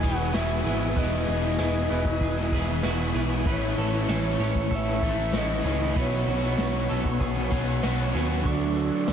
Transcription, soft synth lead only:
0.05 F#5
0.34 E5
0.98 D#5
3.49 C#5
4.75 E5
5.37 D#5
6.01 C#5
8.47 D5

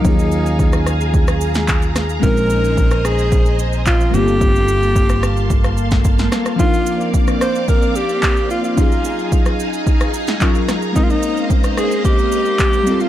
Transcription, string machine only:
Already playing: F5
0.05 G#4 G#5 A#5
2.23 C5 D#5 G#5
4.14 A#3 F5 A5 C6
6.59 C4 D5 D6
8.77 D#4 G#4 G#5 A#5
10.96 A#3 C5 D#5 F5
12.86 G3 A#3 F5 A5 C6

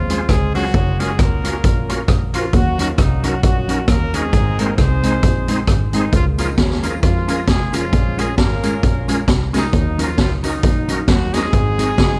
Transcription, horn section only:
Already playing: F3 G#3 C4 F4
0.29 G#3 G#4
0.55 F#3 A#3 C#4 F#4
1.00 G#3 G#4
1.20 A#3 C#4 F4 A#4
2.34 F3 F4
2.54 F#3 A#3 C#4 F#4
2.79 F#3 F#4
2.99 D#3 D#4
3.24 F#3 F#4
3.44 F#3 A#3 C#4 F#4
3.89 A#3 A#4
4.15 G#3 C4 D#4 G#4
4.60 A#3 A#4
4.78 C4 D#4 G#4 C5
5.95 D#3 D#4
6.14 F3 G#3 A#3 F4
6.40 F3 F4
6.58 C#3 C#4
6.84 F3 F4
7.03 F3 G#3 A#3 F4
7.49 G#3 G#4
7.73 F3 G#3 C#4 F4
8.19 G#3 G#4
8.38 A#3 C#4 F4 A#4
9.55 D#3 F#3 A#3 D#4
10.00 F3 F4
10.20 F3 F4
10.44 D#3 F#3 A#3 D#4
11.09 F#3 F#4
11.34 G#3 C4 D#4 G#4

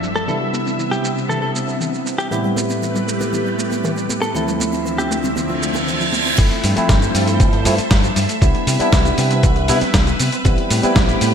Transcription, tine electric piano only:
Already playing: G2 F3 A3 C4 D4 E4
0.27 C3 G3 B3 D4 E4
2.30 A2 G3 B3 C4 E4
4.34 D2 F3 A3 C4 E4
6.38 F3 A3 C4 E4
6.76 F3 A3 C4 E4
7.65 F3 A3 C4 E4
8.41 G3 B3 D4 E4
8.79 G3 B3 D4 E4
9.68 G3 B3 D4 E4
10.45 G3 B3 C4 E4
10.82 G3 B3 C4 E4

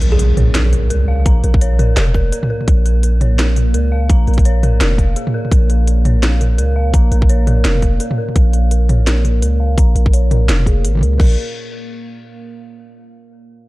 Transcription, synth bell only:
0.01 A#4
0.19 A#4
0.37 C#5
0.55 A#4
0.72 A#4
0.90 A#4
1.08 F5
1.26 A#5
1.44 A#4
1.61 C#5
1.79 A#4
1.97 A#4
2.15 A#4
2.32 A#4
2.50 A#4
2.68 A#4
2.86 A#4
3.03 A#4
3.21 C#5
3.39 A#4
3.56 A#4
3.74 A#4
3.92 F5
4.10 A#5
4.28 A#4
4.45 C#5
4.63 A#4
4.81 A#4
4.99 F5
5.16 G#4
5.34 A#4
5.70 A#4
5.88 A#4
6.05 C#5
6.23 A#4
6.41 A#4
6.58 A#4
6.76 F5
6.94 A#5
7.12 A#4
7.29 C#5
7.47 A#4
7.65 A#4
7.82 A#4
8.00 A#4
8.18 A#4
8.36 A#4
8.54 A#4
8.71 A#4
8.89 C#5
9.07 A#4
9.24 A#4
9.42 A#4
9.60 F5
9.78 A#5
9.96 A#4
10.13 C#5
10.31 A#4
10.67 G#4
10.84 G#4
11.02 A#4
11.20 A#4

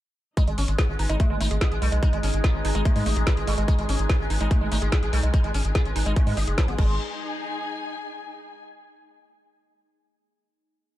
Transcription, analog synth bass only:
0.47 G#1
0.58 G#1
0.68 G#1
0.89 G#1
0.99 G#1
1.10 G#1
1.30 G#1
1.41 G#1
1.51 G#1
1.72 A1
1.82 B1
1.92 B1
2.13 G#1
2.23 G#1
2.34 G#1
2.54 G#1
2.65 G#1
2.75 G#1
2.96 G#2
3.06 A1
3.16 A1
3.37 G#1
3.47 G#1
3.58 G#1
3.79 G#1
3.89 G#1
3.99 G#1
4.20 G#1
4.30 G#1
4.41 G#1
4.61 G#1
4.72 G#1
4.82 G#1
5.03 A1
5.13 B1
5.23 B1
5.44 G#1
5.54 G#1
5.65 G#1
5.85 G#1
5.96 G#1
6.06 G#1
6.27 G#2
6.37 G#1
6.47 F#1
6.68 G#1
6.79 G#1

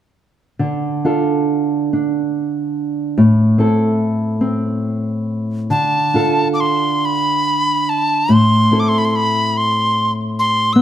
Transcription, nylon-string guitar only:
0.59 D3
1.05 D4 F4 A4
1.93 D4
3.18 A2
3.58 C4 E4 A4
4.41 C4
5.70 D3
6.14 D4 F4 A4
8.29 A2
8.71 C4 E4 A4
10.76 B3

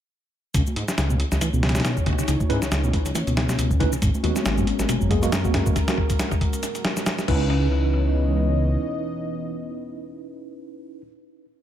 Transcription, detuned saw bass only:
0.55 C#2
0.76 G#2
0.98 C#2
1.32 C#2
1.42 C#2
1.53 C#2
2.06 B2
2.28 C#2
2.50 G#2
2.62 C#2
2.72 C#2
3.06 C#2
3.27 C#2
3.49 C#2
3.59 C#2
4.02 G#1
4.24 D#2
4.46 G#1
4.79 G#1
4.89 G#1
5.01 G#1
5.54 F#2
7.28 C#2

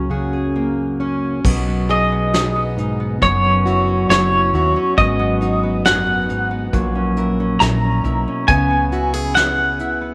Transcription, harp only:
Already playing: F#3 A#3 C#4
0.10 F#4
0.33 G#4
0.56 A#3
1.00 C#4
1.45 F#3
1.67 B3
1.89 D#4
2.12 B3
2.33 D#4
2.55 B3
2.79 D#4
3.00 B3
3.22 F#3
3.44 C#4
3.67 E4
3.88 C#4
4.10 E4
4.32 C#4
4.54 E4
4.76 C#4
4.98 F#3
5.19 B3
5.41 D#4
5.63 B3
5.85 D#4
6.07 B3
6.29 D#4
6.51 B3
6.74 F#3
6.95 C#4
7.17 E4
7.40 C#4
7.62 E4
7.84 C#4
8.05 E4
8.28 C#4
8.48 B3
8.71 B3
8.93 E4
9.15 B3
9.36 E4
9.58 B3
9.80 E4
10.01 B3

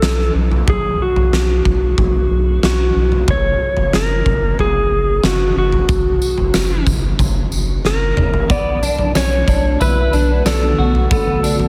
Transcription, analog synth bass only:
0.02 B1
0.34 B1
0.67 B1
1.16 B1
1.32 B1
1.65 B1
1.98 B1
2.30 B1
2.63 B1
2.96 B1
3.28 F#1
3.77 F#1
3.93 F#1
4.26 F#1
4.58 F#1
4.91 F#1
5.23 F#1
5.56 F#1
5.89 F#1
6.37 F#1
6.54 F#1
6.86 F#1
7.19 F#1
7.52 F#1
7.84 F#1
8.17 F#1
8.50 B1
8.99 B1
9.15 B1
9.48 B1
9.80 B1
10.13 B1
10.45 B1
10.78 B1
11.11 B1
11.60 B1

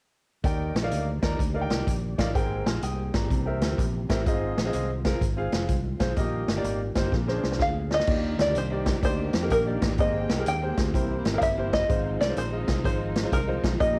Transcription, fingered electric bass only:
0.44 D#2
0.75 A#1
0.92 D2
1.23 D#2
1.39 D2
1.70 C2
1.87 A#1
2.18 A1
2.35 G#1
2.66 A#1
2.83 C2
3.14 G#1
3.30 C2
3.62 D2
3.78 A#1
4.10 A1
4.26 G#1
4.57 A#1
4.74 C2
5.21 G#1
5.53 F1
5.69 C2
6.00 B1
6.17 A#1
6.48 G1
6.64 G#1
6.96 G1
7.12 A#1
7.44 C2
7.60 D2
8.08 D#2
8.39 D2
8.55 C2
9.03 D2
9.34 F2
9.51 A#1
9.82 A1
9.99 G#1
10.30 C2
10.46 D#2
10.78 D2
10.94 C2
11.25 G#1
11.41 G1
11.90 G#1
12.21 C2
12.37 A#1
12.68 C2
12.84 G#1
13.32 C2
13.64 B1
13.80 A#1

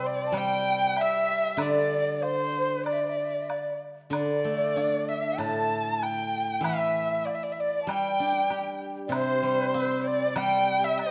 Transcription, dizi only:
0.26 A5
0.34 G5
0.97 E5
1.51 E5
1.58 D5
2.15 D5
2.21 C5
2.86 D5
2.93 E5
3.01 D5
3.09 E5
3.17 D5
3.25 E5
3.34 D5
3.42 E5
3.49 D5
4.13 D5
4.78 D5
5.08 E5
5.39 A5
6.01 G5
6.50 G5
6.65 E5
7.11 E5
7.59 D5
7.83 A5
7.89 G5
9.06 D5
9.14 C5
9.77 C5
10.08 D5
10.38 G5
10.80 G5
10.85 E5
11.00 D5
11.06 C5

